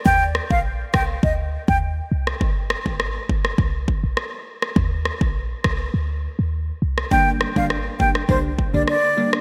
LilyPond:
<<
  \new Staff \with { instrumentName = "Flute" } { \time 4/4 \key ees \major \tempo 4 = 102 g''8 r16 f''16 r8 g''16 r16 ees''16 r8 g''16 r4 | r1 | r1 | g''8 r16 f''16 r8 g''16 r16 c''16 r8 d''16 d''8. r16 | }
  \new Staff \with { instrumentName = "Synth stab" } { \clef bass \time 4/4 \key ees \major r1 | r1 | r1 | <d g bes d'>8. <d g bes d'>16 r8 <d g bes d'>16 r16 <d g bes d'>16 r8 <d g bes d'>16 r8 <d g bes d'>16 r16 | }
  \new Staff \with { instrumentName = "808-style bass" } { \clef bass \time 4/4 \key ees \major ees,8. bes,,8. c,8 d,8. ees,8. c,8 | g,,8. aes,,8. g,,8 c,8. bes,,16 r4 | ees,8. bes,,8. c,8 d,8. ees,8. c,8 | g,,8. aes,,8. g,,8 c,8. bes,,16 r4 | }
  \new DrumStaff \with { instrumentName = "Drums" } \drummode { \time 4/4 bd8 ss16 bd16 r8 <bd ss>8 bd8. bd16 r8. ss16 | bd8 ss16 bd16 ss8 bd16 ss16 bd8 bd8 ss8. ss16 | bd8 ss16 bd16 r8 <bd ss>8 r4 r8. ss16 | bd8 ss16 bd16 ss8 bd16 ss16 bd8 bd8 ss8. ss16 | }
>>